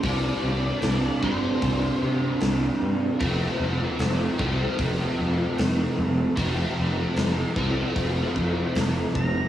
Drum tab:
HH |o-o-o-o-|o-o-o-o-|o-o-o-o-|
SD |--o---o-|--o---o-|--o---o-|
BD |o--oo---|o--oo---|o--ooo-o|